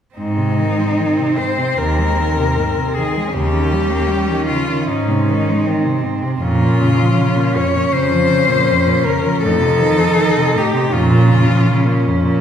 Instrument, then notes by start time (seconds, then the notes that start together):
cello
0.15 G#2 C4 D#4
0.37 C3
0.58 D#3
0.79 G#3
0.98 D#3
1.18 C3
1.37 G#2 C5
1.58 C3
1.78 D#2 D#3 A#4
1.98 G#3
2.19 D#3
2.37 C3
2.57 G#2
2.77 C3
2.94 D#3 G#4
3.17 G#3
3.32 D#2 C#3 C#4 G4
3.53 D#3
3.72 G3
3.91 A#3
4.09 G3
4.30 D#3
4.47 C#3 F4
4.69 D#3
4.88 G#2 D#4
5.08 C3
5.28 D#3
5.49 G#3
5.65 D#3 C4
5.84 C3
6.03 G#2
6.22 C3
6.40 F2 A#2 C#4 F4
6.61 A#2
6.80 C#3
7.00 F3
7.18 C#3
7.36 A#2
7.54 F2 C#5
7.75 A#2
7.92 F2 C#3 C5
8.11 F3
8.29 C#3
8.48 A#2
8.68 F2
8.86 A#2
9.03 C#3 A#4
9.23 F3
9.41 F2 A2 A4
9.45 D#4
9.59 C3
9.78 D#3
9.97 F3
10.16 D#3
10.36 C3
10.54 A2 G4
10.74 C3
10.93 F2 A#2 C#4 F4
11.12 A#2
11.29 C#3
11.48 F3
11.67 C#3
11.85 A#2
12.05 F2
12.23 A#2